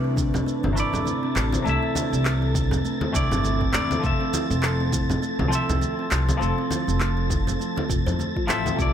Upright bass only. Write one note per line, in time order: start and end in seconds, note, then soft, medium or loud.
0.00 0.39 C2 medium
0.64 0.81 G1 medium
0.94 1.02 G1 medium
1.36 1.56 A1 medium
1.66 1.77 C2 medium
2.13 2.77 C2 medium
3.15 3.25 C2 medium
3.31 3.75 G1 medium
3.74 3.94 E2 medium
4.04 4.14 F1 medium
4.50 5.15 F1 medium
5.39 5.56 C2 medium
5.69 5.77 C2 medium
6.12 6.32 C2 medium
6.41 6.52 F1 medium
6.88 7.52 F1 medium
7.90 8.00 F1 medium
8.06 8.50 F2 medium
8.49 8.69 A1 medium
8.79 8.89 C2 medium